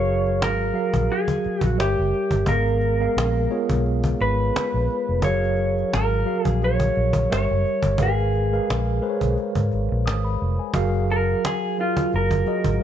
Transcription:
0.00 0.42 F#1 medium
0.00 0.52 F#3 medium
0.00 0.53 F#4 medium
0.00 0.53 G#4 medium
0.00 0.53 A#4 medium
0.00 0.43 C#5 medium
0.00 0.53 F5 loud
0.05 cajon slap soft
0.26 cajon slap soft
0.42 0.70 G#1 medium
0.42 1.13 A#4 medium
0.42 cajon slap loud
0.73 1.77 F#3 medium
0.73 1.77 F#4 medium
0.73 1.77 G#4 medium
0.73 1.77 A#4 medium
0.73 1.78 F5 medium
0.73 cajon slap soft
0.94 1.07 A#1 medium
0.94 cajon bass loud
0.94 cajon slap soft
1.10 1.64 G#4 medium
1.10 cajon slap soft
1.28 cajon bass medium
1.44 muted fingered electric bass stroke soft
1.44 cajon slap soft
1.61 1.76 A#1 medium
1.61 1.80 F#4 medium
1.61 cajon bass medium
1.77 1.95 G1 medium
1.77 2.34 G3 medium
1.77 2.34 G4 medium
1.77 2.50 G4 medium
1.77 2.34 A#4 medium
1.77 2.34 C#5 medium
1.77 2.35 E5 medium
1.77 cajon slap loud
1.99 2.11 F#1 medium
2.14 cajon slap soft
2.31 2.45 G1 medium
2.31 cajon bass medium
2.46 3.06 G#1 loud
2.46 2.88 G#3 medium
2.46 2.88 B3 medium
2.46 2.87 G#4 medium
2.46 2.88 A#4 medium
2.46 3.81 A#4 medium
2.46 2.88 F5 medium
2.46 cajon bass loud
2.68 cajon slap soft
2.81 cajon slap soft
3.00 3.40 G#3 medium
3.00 3.40 B3 medium
3.00 3.40 G#4 medium
3.00 3.40 A#4 medium
3.00 3.41 F5 medium
3.00 cajon slap soft
3.17 3.46 A#1 loud
3.17 cajon slap loud
3.50 4.59 G#3 medium
3.50 4.60 B3 medium
3.50 4.59 F4 medium
3.50 4.59 G#4 medium
3.50 4.59 C#5 medium
3.50 cajon slap soft
3.69 4.13 B1 medium
3.69 cajon bass medium
3.69 cajon slap soft
3.86 cajon slap soft
4.04 cajon bass medium
4.20 4.50 G#1 medium
4.20 5.24 B4 medium
4.20 cajon slap soft
4.56 muted fingered electric bass stroke soft
4.56 cajon slap loud
4.74 4.87 A#1 medium
4.90 cajon slap soft
5.09 5.24 F1 medium
5.22 5.82 F#1 loud
5.22 6.05 F#3 medium
5.22 6.05 F#4 medium
5.22 6.05 G#4 medium
5.22 6.05 A#4 medium
5.22 5.94 C#5 loud
5.22 6.05 F5 medium
5.22 cajon bass loud
5.44 cajon slap soft
5.56 cajon slap soft
5.78 cajon slap soft
5.93 6.22 G#1 medium
5.93 6.47 A#4 medium
5.93 cajon slap loud
6.26 7.29 F#3 medium
6.26 7.29 F#4 medium
6.26 7.29 G#4 medium
6.26 7.29 A#4 medium
6.26 7.30 F5 medium
6.26 cajon slap soft
6.45 6.89 A#1 medium
6.45 6.64 G#4 medium
6.45 cajon bass medium
6.45 cajon slap soft
6.62 7.31 C#5 loud
6.62 cajon slap soft
6.80 cajon bass medium
6.96 7.26 A#1 medium
6.96 cajon slap soft
7.13 cajon bass loud
7.30 7.47 G1 medium
7.30 7.86 G3 medium
7.30 7.86 G4 medium
7.30 7.86 A#4 medium
7.30 7.86 C#5 medium
7.30 8.02 C#5 loud
7.30 7.87 E5 medium
7.30 cajon slap loud
7.51 7.63 F#1 medium
7.66 cajon slap soft
7.83 7.97 G1 medium
7.83 cajon bass medium
7.98 8.58 G#1 medium
7.98 8.40 G#3 medium
7.98 8.40 G#4 medium
7.98 8.40 A#4 medium
7.98 8.40 B4 medium
7.98 8.40 F5 medium
7.98 cajon bass loud
8.03 9.34 G#4 medium
8.20 cajon slap soft
8.33 cajon slap soft
8.35 cajon slap soft
8.52 8.92 G#3 medium
8.52 8.92 G#4 medium
8.52 8.92 A#4 medium
8.52 8.93 B4 medium
8.52 8.93 F5 medium
8.52 cajon slap soft
8.70 8.98 A#1 medium
8.70 cajon slap loud
9.02 10.10 G#3 medium
9.02 10.11 G#4 medium
9.02 10.11 A#4 medium
9.02 10.11 B4 medium
9.02 9.09 C5 medium
9.02 cajon slap soft
9.09 10.14 C#5 medium
9.21 9.35 B1 medium
9.21 cajon bass medium
9.21 cajon slap soft
9.38 cajon slap medium
9.55 9.69 G#2 medium
9.55 cajon bass medium
9.71 9.88 G#1 medium
9.71 cajon slap soft
9.92 10.07 A#1 medium
10.06 10.36 G#1 medium
10.06 10.23 D#6 medium
10.06 cajon slap loud
10.25 10.57 B5 medium
10.42 10.57 F1 medium
10.59 10.92 G#5 medium
10.74 11.34 F#1 loud
10.74 11.57 F#3 loud
10.74 11.57 F#4 medium
10.74 11.57 G#4 medium
10.74 11.57 A#4 medium
10.74 11.57 F5 loud
10.74 cajon bass loud
10.95 cajon slap soft
11.08 11.46 A#4 loud
11.08 cajon slap soft
11.30 cajon slap soft
11.45 11.77 G#4 medium
11.45 cajon slap loud
11.78 12.33 F#3 medium
11.78 12.34 F4 medium
11.78 12.11 F4 medium
11.78 12.34 G#4 medium
11.78 12.34 A#4 medium
11.78 12.34 F5 medium
11.78 cajon slap soft
11.97 cajon bass medium
11.97 cajon slap soft
12.12 12.43 F#1 medium
12.12 12.83 A#4 medium
12.12 cajon slap soft
12.31 cajon bass medium
12.46 12.81 F#3 medium
12.46 12.81 F#4 medium
12.46 12.81 G#4 medium
12.46 12.80 A#4 medium
12.46 12.82 D#5 medium
12.46 cajon slap soft
12.64 12.79 G#1 medium
12.64 cajon bass loud
12.80 12.83 G3 medium

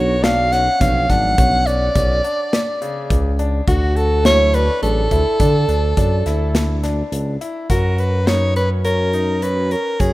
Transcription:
0.00 0.68 B1 loud
0.00 0.15 F#3 medium
0.00 0.15 B3 medium
0.00 0.15 D4 medium
0.00 0.15 F#4 medium
0.00 0.25 C#5 medium
0.23 0.48 D4 medium
0.23 0.54 F5 loud
0.23 snare loud
0.23 closed hi-hat medium
0.52 0.77 C#4 medium
0.52 0.83 F#5 loud
0.52 snare soft
0.52 closed hi-hat medium
0.80 1.07 B1 medium
0.80 1.61 F3 medium
0.80 1.61 F#3 medium
0.80 1.61 B3 medium
0.80 1.05 C#4 medium
0.80 1.61 D4 medium
0.80 1.11 F5 loud
0.80 kick loud
0.80 snare soft
0.80 closed hi-hat medium
1.10 1.35 G#1 medium
1.10 1.34 D4 medium
1.10 1.68 F#5 loud
1.10 kick medium
1.10 snare soft
1.10 closed hi-hat medium
1.38 1.89 B1 loud
1.38 1.62 C#4 medium
1.38 kick loud
1.38 closed hi-hat medium
1.67 1.91 C#4 medium
1.67 3.39 D5 loud
1.67 closed hi-hat medium
1.95 2.21 B1 medium
1.95 2.20 C#4 medium
1.95 kick loud
1.95 closed hi-hat medium
2.24 2.73 D4 medium
2.24 closed hi-hat medium
2.53 snare medium
2.53 closed hi-hat medium
2.82 3.30 C#3 medium
2.82 closed hi-hat medium
3.10 3.61 C#2 medium
3.10 kick loud
3.10 closed hi-hat medium
3.39 3.63 D4 medium
3.39 closed hi-hat medium
3.67 4.70 D2 loud
3.67 3.98 F#4 medium
3.67 4.16 F#4 medium
3.67 kick loud
3.67 closed hi-hat medium
3.96 4.25 A4 loud
3.96 closed hi-hat soft
4.25 4.65 F#3 medium
4.25 4.65 A3 medium
4.25 4.65 D4 medium
4.25 4.49 E4 medium
4.25 4.65 F#4 medium
4.25 4.56 C#5 loud
4.25 snare loud
4.25 closed hi-hat medium
4.54 4.78 D4 medium
4.54 4.82 B4 loud
4.54 closed hi-hat medium
4.82 5.08 A1 loud
4.82 5.02 F#3 medium
4.82 5.02 A3 medium
4.82 5.02 D4 medium
4.82 5.07 D4 medium
4.82 5.02 G#4 medium
4.82 7.08 A4 loud
4.82 closed hi-hat medium
5.11 5.24 D2 loud
5.11 5.36 E4 medium
5.11 kick medium
5.11 closed hi-hat medium
5.40 5.65 D3 loud
5.40 5.64 D4 medium
5.40 kick loud
5.40 closed hi-hat medium
5.68 5.94 D2 loud
5.68 5.93 D4 medium
5.68 closed hi-hat medium
5.97 6.23 F#2 loud
5.97 6.21 D4 medium
5.97 kick medium
5.97 closed hi-hat medium
6.26 7.03 D2 medium
6.26 6.75 E4 medium
6.26 snare soft
6.26 closed hi-hat medium
6.55 snare medium
6.55 closed hi-hat medium
6.83 7.32 D4 medium
6.83 snare soft
6.83 closed hi-hat medium
7.12 7.37 C#2 medium
7.12 closed hi-hat medium
7.41 7.65 E4 medium
7.41 closed hi-hat medium
7.70 9.75 F#2 medium
7.70 8.18 F#4 medium
7.70 8.01 A#4 medium
7.70 kick medium
7.70 closed hi-hat medium
7.98 8.29 B4 medium
7.98 closed hi-hat medium
8.27 8.52 D#4 medium
8.27 8.56 C#5 loud
8.27 snare medium
8.27 closed hi-hat medium
8.56 8.80 C#4 medium
8.56 8.69 B4 medium
8.56 closed hi-hat soft
8.85 9.09 C#4 medium
8.85 9.44 A#4 medium
8.85 closed hi-hat medium
9.13 9.38 D#4 medium
9.13 closed hi-hat soft
9.42 9.67 C#4 medium
9.42 9.73 B4 medium
9.42 closed hi-hat medium
9.71 9.96 C#4 medium
9.71 10.01 A#4 medium
9.71 closed hi-hat medium
10.00 10.13 F#2 medium
10.00 10.13 C#4 medium
10.00 10.13 G#4 medium
10.00 kick medium
10.00 closed hi-hat medium

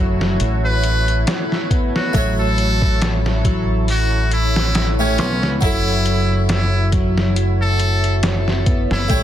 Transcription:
0.00 0.36 F#1 loud
0.00 0.38 F#3 medium
0.00 2.09 F#3 medium
0.00 5.58 A3 medium
0.00 2.10 E4 medium
0.00 9.23 E4 medium
0.00 2.11 F#4 medium
0.00 2.11 A4 medium
0.00 9.23 C#5 medium
0.21 snare soft
0.40 1.24 A1 medium
0.40 closed hi-hat medium
0.65 1.21 B4 loud
0.84 closed hi-hat medium
1.08 closed hi-hat soft
1.27 snare loud
1.27 closed hi-hat medium
1.52 snare soft
1.71 2.12 B3 medium
1.71 kick loud
1.71 closed hi-hat medium
1.96 2.34 F#4 medium
1.96 snare soft
2.13 5.19 A1 loud
2.13 3.41 F#3 medium
2.13 4.93 A3 medium
2.13 4.94 E5 medium
2.13 5.58 A5 medium
2.13 kick loud
2.13 closed hi-hat medium
2.17 4.95 C#5 medium
2.40 3.16 A4 loud
2.58 closed hi-hat medium
2.82 kick medium
3.02 snare loud
3.02 closed hi-hat medium
3.26 snare soft
3.45 3.86 F#3 medium
3.45 kick loud
3.45 closed hi-hat medium
3.88 4.29 F#4 medium
3.88 open hi-hat medium
4.32 4.93 E4 loud
4.32 closed hi-hat medium
4.56 snare medium
4.75 snare loud
4.75 closed hi-hat medium
4.99 5.24 A3 loud
4.99 5.57 C#4 medium
4.99 5.24 G4 medium
4.99 5.25 C#5 loud
5.18 5.43 B1 loud
5.18 5.60 B3 medium
5.18 snare medium
5.18 closed hi-hat medium
5.43 5.60 C#2 medium
5.43 snare soft
5.61 8.86 F#1 loud
5.61 9.05 F#3 medium
5.61 6.89 F#3 medium
5.61 9.23 A3 medium
5.61 9.06 E4 medium
5.61 6.42 E4 loud
5.61 9.07 F#4 medium
5.61 kick loud
5.61 closed hi-hat medium
5.65 9.07 A4 loud
6.06 closed hi-hat medium
6.49 6.89 E4 medium
6.49 snare loud
6.49 closed hi-hat medium
6.92 7.34 F#3 medium
6.92 kick loud
6.92 closed hi-hat medium
7.18 snare soft
7.36 closed hi-hat medium
7.62 8.18 A4 medium
7.80 closed hi-hat medium
8.04 closed hi-hat soft
8.23 snare loud
8.23 closed hi-hat medium
8.48 snare soft
8.66 9.08 B3 medium
8.66 kick loud
8.66 closed hi-hat medium
8.91 9.08 F#1 loud
8.91 9.23 E4 medium
8.91 snare soft
9.08 9.23 A1 loud
9.08 9.23 G3 medium
9.08 9.23 A3 medium
9.08 9.23 C#5 medium
9.08 9.23 G5 medium
9.08 kick loud
9.08 closed hi-hat medium

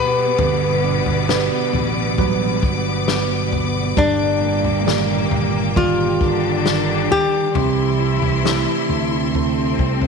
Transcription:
0.00 0.38 G2 medium
0.00 3.93 B2 medium
0.00 0.35 G3 medium
0.00 1.27 B3 medium
0.00 3.93 B3 medium
0.00 0.83 D4 medium
0.00 1.28 F#4 soft
0.00 1.29 G4 medium
0.00 1.28 B4 medium
0.00 1.29 B4 medium
0.00 1.70 B4 medium
0.00 3.93 B4 medium
0.00 10.07 D5 medium
0.00 0.36 F#5 medium
0.00 3.93 F#5 medium
0.00 7.51 D6 loud
0.39 1.02 G1 loud
0.39 3.96 G2 medium
0.39 3.93 D3 medium
0.39 floor tom loud
0.84 1.29 D4 medium
1.06 1.48 G1 medium
1.06 floor tom medium
1.28 4.06 B3 medium
1.28 4.41 D4 medium
1.28 2.15 F#4 medium
1.28 2.15 G4 soft
1.28 2.15 B4 medium
1.28 4.07 B4 medium
1.28 snare loud
1.73 2.59 A1 loud
1.73 floor tom medium
2.18 4.06 F#3 medium
2.18 3.05 G3 medium
2.18 3.05 F#4 soft
2.18 3.05 B4 medium
2.18 kick loud
2.18 floor tom medium
2.63 3.93 G1 loud
2.63 kick loud
3.07 3.94 G3 soft
3.07 3.94 F#4 soft
3.07 3.95 B4 medium
3.07 snare loud
3.52 floor tom medium
3.96 5.27 G1 loud
3.96 7.55 G2 medium
3.96 6.17 A#2 medium
3.96 7.51 G3 medium
3.96 6.16 A#3 medium
3.96 5.28 D4 loud
3.96 7.52 A#4 medium
3.96 7.52 G5 medium
3.96 kick loud
3.96 floor tom loud
4.41 4.85 D4 medium
4.64 floor tom medium
4.86 5.73 D#3 medium
4.86 7.64 A#3 medium
4.86 7.64 D4 medium
4.86 5.74 G4 soft
4.86 8.37 G4 medium
4.86 5.74 D5 medium
4.86 snare loud
5.31 6.17 G1 loud
5.31 floor tom medium
5.76 6.63 D#3 medium
5.76 9.26 G3 medium
5.76 7.11 F4 loud
5.76 6.63 G4 medium
5.76 6.63 D5 medium
5.76 kick medium
5.76 floor tom medium
6.20 7.06 G1 loud
6.20 7.53 D3 loud
6.20 7.52 D4 loud
6.20 kick medium
6.65 7.52 D#3 medium
6.65 7.52 G4 soft
6.65 7.53 D5 medium
6.65 snare loud
7.11 10.07 G4 loud
7.11 floor tom medium
7.55 8.18 C2 loud
7.55 10.07 C3 medium
7.55 9.31 E3 medium
7.55 9.31 E4 medium
7.55 10.07 A4 medium
7.55 10.07 E5 medium
7.55 10.07 C6 loud
7.55 floor tom loud
8.00 8.44 E4 medium
8.22 8.64 C2 medium
8.22 floor tom medium
8.44 9.31 A3 medium
8.44 10.07 C4 medium
8.44 9.32 C4 medium
8.44 10.07 E4 medium
8.44 9.32 E4 medium
8.44 10.07 G4 medium
8.44 snare loud
8.89 9.75 D2 loud
8.89 floor tom medium
9.34 10.07 C3 medium
9.34 10.07 A3 soft
9.34 10.07 A3 medium
9.34 10.07 C4 loud
9.34 10.07 C4 soft
9.34 10.07 E4 medium
9.34 floor tom medium
9.79 10.07 C2 loud
9.79 kick loud
10.01 floor tom medium

